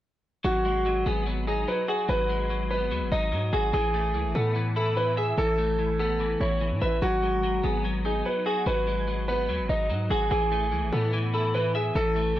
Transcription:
0.44 G#1 F#3 F#4
0.65 G#3
0.86 F#3
1.06 G#1 B3 G#4
1.27 F#3
1.47 D#4 G#4
1.68 F#3 B4
1.88 F#4 G#4
2.09 G#1 F#3 B4
2.29 G#3
2.50 F#3
2.71 B3 B4
2.91 D#2 F#3
3.01 G#1
3.12 G#1 D#4 D#5
3.32 G#2 F#3
3.53 G#1 F#4 G#4
3.73 A1 E3 G#4
3.94 A3
4.14 C#2 E3
4.25 A1
4.35 A2 B3 A4
4.56 E3
4.76 E4 A4
4.97 E3 B4
5.17 G#4 E5
5.38 A1 E3 A4
5.58 A3
5.79 E3
5.99 B3 A4
6.20 E3
6.41 A1 E4 C#5
6.61 E3
6.71 A2
6.82 A1 B4 E5
7.02 G#1 F#3 F#4
7.23 G#3
7.43 F#3
7.63 G#1 B3 G#4
7.84 F#3
8.05 D#4 G#4
8.25 F#3 B4
8.46 F#4 G#4
8.66 G#1 F#3 B4
8.87 G#3
9.08 F#3
9.28 B3 B4
9.49 D#2 F#3
9.59 G#1
9.69 G#1 D#4 D#5
9.90 G#2 F#3
10.10 G#1 F#4 G#4
10.31 A1 E3 G#4
10.52 A3
10.72 C#2 E3
10.82 A1
10.93 A2 B3 A4
11.13 E3
11.34 E4 A4
11.54 E3 B4
11.75 G#4 E5
11.95 A1 E3 A4
12.16 A3
12.36 E3

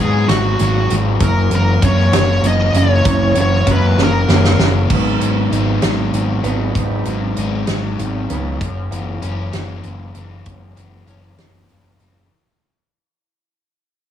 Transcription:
Already playing: G#2 D#3 F#3 B3
0.00 G#4
0.27 G#1 G#2 D#3 F#4, snare, closed hi-hat
0.59 G#1 G#2 D#3 F#3, closed hi-hat
0.90 G#1 G#2 D#3, closed hi-hat
1.20 F#1 F#2 F#3 C#4 E4 A#4, kick, closed hi-hat
1.50 F#1 E3, closed hi-hat
1.54 F#3 C#4 A#4
1.82 F#2 F#3 A#3 C#4 C#5, kick, closed hi-hat
2.11 F#1 C#3 F#3 C#4, snare, closed hi-hat
2.17 C#5
2.41 F#1 E3 F#3, closed hi-hat
2.46 C#4 D#5
2.72 F#1 C#3 F#3 C#4, closed hi-hat
2.78 C#5
3.05 F#1 F#2 F#3 C#4 E4, kick, closed hi-hat
3.34 F#1 E3 F#3 C#4, closed hi-hat
3.41 C#5
3.66 F#2 F#3 A#3 C#4, kick, closed hi-hat
3.72 B4
3.97 F#1 C#3 F#3 C#4, snare
4.03 A#4
4.27 F#1 E3 F#3 C#4, snare
4.44 snare
4.57 F#1 C#3 F#3 C#4, snare
4.89 G#1 G#2 D#3 F#3, kick, crash
4.93 B3 D#4 B4
5.20 G#1 F#3, closed hi-hat
5.51 G#1 D#4, closed hi-hat
5.82 G#1 F#3, snare, closed hi-hat
6.12 G#1 D#3, closed hi-hat
6.43 G#1 D#3 F#3 B3 D#4 B4, closed hi-hat
6.48 G#2
6.75 G#1 G#2 D#3 F#3 B3 D#4 B4, kick, closed hi-hat
7.05 G#1 F#3, closed hi-hat
7.36 G#1 D#4, closed hi-hat
7.67 G#1 F#3, snare, closed hi-hat
7.98 G#1 D#3, closed hi-hat
8.29 C#2 F#3 B3 D#4 B4, closed hi-hat
8.33 G#2 D#3
8.61 F#1 F#2, kick, closed hi-hat
8.91 F#1 E3, closed hi-hat
9.22 F#1 C#4, closed hi-hat
9.53 F#1 E3, snare, closed hi-hat
9.83 F#1 C#3, closed hi-hat
10.15 F#1 E3, closed hi-hat
10.46 F#1 F#2, kick, closed hi-hat
10.76 F#1 E3, closed hi-hat
11.07 F#1 C#4, closed hi-hat
11.38 F#1 E3, snare, closed hi-hat
11.69 F#1 C#3, closed hi-hat
12.00 F#1 E3, closed hi-hat

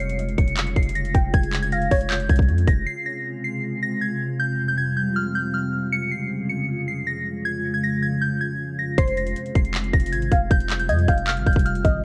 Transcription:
Already playing: F1 C#3 G#3 F4 C#5
0.00 C7, closed hi-hat
0.10 closed hi-hat
0.19 closed hi-hat
0.29 closed hi-hat
0.38 F1 C#7, kick, closed hi-hat
0.48 closed hi-hat
0.57 clap, closed hi-hat
0.67 closed hi-hat
0.76 F1 C7, kick, closed hi-hat
0.83 closed hi-hat
0.89 closed hi-hat
0.95 A#6, closed hi-hat
1.05 closed hi-hat
1.15 F1 G5, kick, closed hi-hat
1.34 F1 G#6, kick, closed hi-hat
1.43 closed hi-hat
1.53 clap, closed hi-hat
1.62 G#6, closed hi-hat
1.72 F5 A#6, closed hi-hat
1.81 closed hi-hat
1.91 F1 C#5 G#6, kick, closed hi-hat, open hi-hat
2.01 closed hi-hat
2.10 G6, clap, closed hi-hat
2.20 closed hi-hat
2.29 C2 G#6, kick, closed hi-hat
2.36 kick, closed hi-hat
2.42 closed hi-hat
2.48 F2, closed hi-hat
2.58 closed hi-hat
2.67 F1 A#6, kick, closed hi-hat
2.86 C3 G#3 F4 C7
3.06 A#6
3.44 C7
3.82 A#6
4.01 G#6
4.39 F2 C3 G3 G6
4.68 G6
4.78 G#6
4.97 G6
5.16 F6
5.35 G6
5.54 F6
5.92 C#3 G#3 C#7
6.11 C7
6.49 C#7
6.88 C7
7.07 A#6
7.45 G#6
7.74 G#6
7.83 A#6
8.02 G#6
8.21 G6
8.41 G#6
8.79 A#6
8.98 F1 C3 F4 C5 C7, kick, closed hi-hat
9.08 closed hi-hat
9.17 A#6, closed hi-hat
9.27 closed hi-hat
9.36 closed hi-hat
9.46 closed hi-hat
9.55 F1 C7, kick, closed hi-hat
9.65 closed hi-hat
9.74 clap, closed hi-hat
9.84 closed hi-hat
9.94 F1 A#6, kick, closed hi-hat
10.00 closed hi-hat
10.06 closed hi-hat
10.13 G#1 G#6, closed hi-hat
10.22 closed hi-hat
10.32 F1 F5, kick, closed hi-hat
10.51 F1 G3 G6, kick, closed hi-hat
10.61 closed hi-hat
10.70 clap, closed hi-hat
10.80 G6, closed hi-hat
10.89 F2 D#5 G#6, closed hi-hat
10.99 closed hi-hat
11.08 F1 F5 G6, kick, closed hi-hat
11.18 closed hi-hat
11.27 F6, clap, closed hi-hat
11.37 G#1, closed hi-hat
11.46 F1 G6, kick, closed hi-hat
11.53 kick, closed hi-hat
11.59 closed hi-hat
11.66 F6, closed hi-hat
11.75 closed hi-hat
11.85 G#1 D#5, kick, closed hi-hat

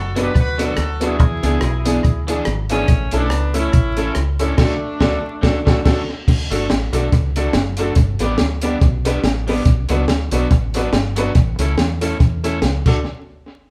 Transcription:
Already playing: F#1 F#4 A4
0.15 F#3 B3 D4 F#4 B4, closed hi-hat
0.21 G4 B4
0.35 D2 F#4 B4, kick, closed hi-hat
0.58 F#3 B3 D4 F#4 B4, closed hi-hat
0.62 F#4 A4
0.77 D2, cross-stick, closed hi-hat
1.01 F#3 B3 D4 F#4 B4, closed hi-hat
1.06 E4 G#4
1.20 E2, kick, closed hi-hat
1.43 C#2 E3 B3 D4 E4 G#4, closed hi-hat
1.61 B1, cross-stick, closed hi-hat
1.85 E3 B3 D4 E4 G#4, closed hi-hat
2.05 D2, kick, closed hi-hat
2.27 E3 B3 D4 E4 G#4, closed hi-hat
2.45 G#1, cross-stick, closed hi-hat
2.69 E3 A3 B3 C#4 D4 E4 G#4, closed hi-hat
2.88 A1, kick, closed hi-hat
3.11 B1 A3 B3 C#4 D4 E4 A4, closed hi-hat
3.30 C#2, cross-stick, closed hi-hat
3.54 A3 C#4 E4 A4, closed hi-hat
3.73 A1, kick, closed hi-hat
3.97 A3 C#4 E4 A4, closed hi-hat
4.15 C#2, cross-stick, closed hi-hat
4.39 A3 C#4 D4 E4 A4, closed hi-hat
4.58 D2 A3 D4 F#4 A4, kick, snare, crash
5.01 D2 A3 D4 F#4 A4, kick, snare
5.41 D2 A3 D4 F#4 A4, kick, snare
5.66 D2 A3 D4 F#4 A4, kick, snare
5.84 D2 A3 D4 F#4 A4, kick, snare, crash
6.28 D2, kick, crash
6.51 G1 A3 D4 F#4 A4, closed hi-hat
6.70 A1, snare, closed hi-hat
6.93 B1 A3 D4 F#4 A4, closed hi-hat
7.12 C#2, kick, closed hi-hat
7.36 A3 D4 F#4 A4, closed hi-hat
7.53 F#1, snare, closed hi-hat
7.77 A3 D4 F#4 A4, closed hi-hat
7.95 G1, kick, closed hi-hat
8.19 A1 G3 B3 D4 G4 B4, closed hi-hat
8.38 D2, snare, closed hi-hat
8.62 G3 B3 D4 G4 B4, closed hi-hat
8.81 B1, kick, closed hi-hat
9.05 G3 B3 D4 G4 B4, closed hi-hat
9.23 A1, snare, closed hi-hat
9.47 G3 B3 D4 G4 B4, open hi-hat
9.65 B1, kick, closed hi-hat
9.89 C#2 F#3 B3 D4 F#4 B4, closed hi-hat
10.08 D2, snare, closed hi-hat
10.31 B1 F#3 B3 D4 F#4 B4, closed hi-hat
10.51 A1, kick, closed hi-hat
10.74 F#3 B3 D4 F#4 B4, closed hi-hat
10.93 G1, snare, closed hi-hat
11.16 F#3 B3 D4 F#4 B4, closed hi-hat
11.35 A1, kick, closed hi-hat
11.59 C#2 A3 C#4 E4 A4, closed hi-hat
11.77 E2, snare, closed hi-hat
12.01 A3 C#4 E4 A4, closed hi-hat
12.20 E2, kick, closed hi-hat
12.44 A3 C#4 E4 A4, closed hi-hat
12.62 C#2, snare, closed hi-hat
12.86 D2 A3 D4 F#4 A4, kick, crash

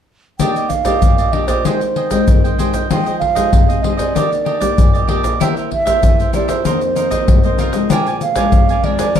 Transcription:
0.39 D#3 A#3 D4 G4 D5 D#5 G5, pandeiro, shaker, surdo
0.56 G4 D5 D#5, pandeiro, shaker
0.69 F5, muted cavaquinho stroke, pandeiro, shaker, surdo
0.85 A#3 G4 D5 D#5, pandeiro, shaker, surdo
1.02 A#2, pandeiro, shaker, surdo
1.18 G4 D5 D#5, pandeiro, shaker
1.33 A#3 D4 G4 D5 D#5, pandeiro
1.48 G4 C5 D5 D#5, pandeiro, shaker, surdo
1.65 D#3 G#3 C4 G4 G#4 C5 D#5 G5, pandeiro, shaker, surdo
1.81 muted cavaquinho stroke, pandeiro, shaker
1.96 G#4 C5 D#5 G5, pandeiro
2.11 G#3 C4 G4 C5 D#5 G5, pandeiro, shaker, surdo
2.28 D#3, pandeiro, shaker, surdo
2.44 C5 D#5 G5, pandeiro, shaker
2.58 G#3 C4 G4 G#4 C5 D#5 G5, pandeiro, shaker
2.74 C5 D#5 G5, pandeiro, shaker, surdo
2.90 F3 G#3 D#4 F4 G4 G#4 C5 D#5 G5, pandeiro, shaker, surdo
3.06 G#4 C5 D#5, pandeiro, shaker
3.19 F5, muted cavaquinho stroke, pandeiro, surdo
3.35 G#3 D#4 G4 G#4 C5 D#5, pandeiro, shaker, surdo
3.53 C3, pandeiro, shaker, surdo
3.69 G#4 C5 D#5, pandeiro, shaker
3.82 G#3 D#4 F4 G4 G#4 C5 D#5, pandeiro
3.96 G#4 C5 D5 D#5, pandeiro, shaker, surdo
4.15 D#3 A#3 D4 G4 D5 D#5, pandeiro, shaker, surdo
4.31 muted cavaquinho stroke, pandeiro, shaker
4.45 D4 G4 D5 D#5, pandeiro
4.60 A#3 D4 G4 D5, pandeiro, shaker, surdo
4.78 A#2, pandeiro, shaker, surdo
4.93 G4 D5 D#5, pandeiro, shaker
5.08 A#3 D4 G4 D5 D#5, pandeiro
5.23 G4 D5 D#5, pandeiro, shaker, surdo
5.40 E3 A#3 C4 E4 G4 A#4 C5 E5 G5, pandeiro, shaker, surdo
5.56 A#4 C5 E5, pandeiro, shaker
5.71 E5, muted cavaquinho stroke, pandeiro, surdo
5.85 A#3 C4 G4 A#4 C5 E5, pandeiro, shaker, surdo
6.03 E3, pandeiro, shaker, surdo
6.19 A#4 C5 E5, pandeiro, shaker
6.33 A#3 C4 E4 G4 A#4 C5 D5 E5, pandeiro, shaker
6.48 A#4 C5 E5, pandeiro, shaker, surdo
6.65 F2 D#3 A#3 C4 F4 A#4 C5 D#5, pandeiro, shaker, surdo
6.81 muted cavaquinho stroke, pandeiro, shaker
6.95 F4 A#4 C5 D#5, pandeiro, shaker
7.11 D#3 A#3 C4 A#4 C5 D#5, pandeiro, shaker, surdo
7.28 C3, pandeiro, shaker, surdo
7.43 D#3 A#3 C4 A#4 C5 D#5, pandeiro, shaker
7.58 F4 A#4 C5 D#5, pandeiro, shaker
7.73 F3 G#3 D4 A#4 C5 D#5, pandeiro, shaker, surdo
7.90 A#2 D4 A#4 D5 G5 G#5, pandeiro, shaker, surdo
8.06 A#4 D5 G#5, pandeiro, shaker
8.21 F5, muted cavaquinho stroke, pandeiro, shaker
8.36 F3 G#3 D4 A#4 D5 G#5, pandeiro, shaker, surdo
8.52 F2, pandeiro, shaker, surdo
8.69 A#4 D5 G#5, pandeiro, shaker
8.83 F3 G#3 D4 A#4 D5 G#5, pandeiro
8.99 A#4 D5 G#5, pandeiro, shaker, surdo
9.15 A#2 F3 G#3 D4 A#4, pandeiro, shaker, surdo

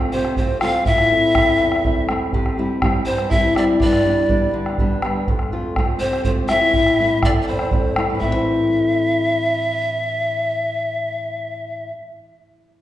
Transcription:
Already playing: A3 C4 D4 F4
0.12 C3 C4 C5
0.25 bombo rim
0.37 A3 C4 F4 C5, bombo low
0.61 A3 C4 F4 F5, bombo rim
0.86 A2 E4 E5, bombo low
0.98 bombo rim
1.11 A3 C4 E4
1.22 bombo rim
1.34 A3 C4 E4, bombo rim, bombo low
1.47 bombo rim
1.60 E2
1.72 bombo rim
1.84 A3 C4 E4, bombo low
2.09 A3 C4 E4, bombo rim
2.33 C3, bombo low
2.46 bombo rim
2.58 G3 C4 E4
2.82 G3 C4 E4, bombo rim, bombo low
2.95 bombo rim
3.06 G2 C4 C5
3.18 bombo rim
3.30 G3 C4 E4 E5, bombo low
3.55 G3 C4 D4 E4 D5, bombo rim
3.80 G2 D4 D5, bombo low
3.93 bombo rim
4.04 G3 B3 D4
4.29 G3 B3 D4, bombo low
4.42 bombo rim
4.54 D3
4.66 bombo rim
4.78 G3 B3 D4, bombo low
5.02 G3 B3 D4, bombo rim
5.27 F2, bombo low
5.39 bombo rim
5.52 A3 C4 F4
5.76 A3 C4 F4, bombo rim, bombo low
5.89 bombo rim
5.99 C3 C4 C5
6.13 bombo rim
6.23 A3 C4 F4 C5, bombo low
6.49 A3 C4 E4 F4 E5, bombo rim
6.74 A2, bombo rim, bombo low
6.86 bombo rim
7.00 A3 C4 E4
7.23 A3 C4 D4 E4 D5, bombo rim, bombo low
7.41 D4 D5
7.47 E2 C4 C5, bombo rim
7.59 bombo rim
7.71 A3 C4 E4, bombo low
7.96 A3 C4 E4, bombo rim
8.10 A2
8.15 E3
8.20 A3 E4 E5, bombo low
8.25 C4
8.30 E4
8.35 C5

